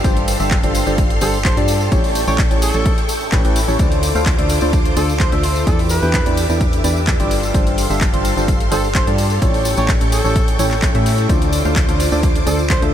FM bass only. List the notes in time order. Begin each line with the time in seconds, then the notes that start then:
0.04 G1
0.40 G1
0.63 G1
0.87 G1
1.22 G1
1.57 G2
1.92 A1
2.28 A1
2.51 A1
2.74 A1
3.32 A1
3.45 A1
3.68 A1
3.79 D2
4.15 D2
4.39 D2
4.62 D2
4.97 D2
5.32 D2
5.67 E2
6.03 E2
6.26 E2
6.49 E2
6.84 E2
7.20 G1
7.54 G1
7.90 G1
8.14 G1
8.37 G1
8.72 G1
9.07 G2
9.42 A1
9.78 A1
10.01 A1
10.24 A1
10.59 A1
10.95 A2
11.29 D2
11.65 D2
11.89 D2
12.12 D2
12.47 D2
12.82 D2